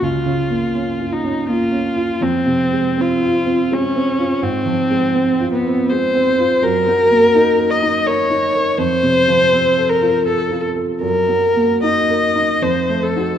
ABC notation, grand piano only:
X:1
M:3/4
L:1/8
Q:1/4=82
K:Fphr
V:1 name="Grand piano"
(3D,, D, B, (3D F D (3B, D F | (3F,, C, A, (3C F C (3A, C F | (3A,, F, A, (3C F C (3A, C F | (3G,, G, B, (3E B E (3B E B |
(3F,, C, F, (3C =A F (3A F A | (3G,, G, B, (3E B E (3F,, =A, [EG] |]